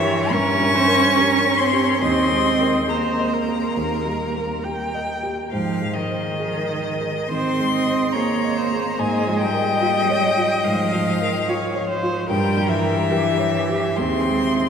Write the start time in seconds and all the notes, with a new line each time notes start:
Already playing: G2 E3 G3 A#4 C#5 E5
0.00 G4
0.31 G2 C#4 A#4 C#6
0.59 G3
0.76 C5
0.88 A#4
1.16 G4 A#4
1.45 C#5
1.57 C4 C#5 C6
1.73 G4
2.01 D#2 C4 D#5 C6
2.31 G#3
2.61 A#4
2.88 G#4 C5 A#5
2.92 A#3
3.19 D#5
3.34 A#4
3.48 G#4
3.77 D#2
4.06 G3
4.35 A#4
4.65 G4 G5
4.94 D#5
5.23 G4
5.52 G#2 F3 F5
5.81 G#3
5.93 D#3 D#5
6.11 C5
6.40 G#4
6.69 D#5
7.01 G#4
7.28 D#3 C4 C5 C6
7.59 G#3
7.72 D#5
7.87 C5
8.13 A#3 G#4 C#5 A#5
8.44 D#5
8.57 C5
8.73 G#4
8.99 G#2 G#3 D#5 G#5
9.27 F3
9.39 G3 G5
9.53 A#4
9.81 F4
10.10 C#5
10.37 F4
10.64 G#2 F3 F5
10.93 F3
11.21 A#4
11.49 F4 C#5
11.75 C#5
11.89 C5
12.03 F4
12.29 G2 G3 A#4 G5
12.57 G3
12.69 E3 E5
12.84 A#4
13.10 G4
13.39 C#5
13.70 G4
13.96 D#2 C4 G#4 C6
14.28 G#3
14.56 D#4 C5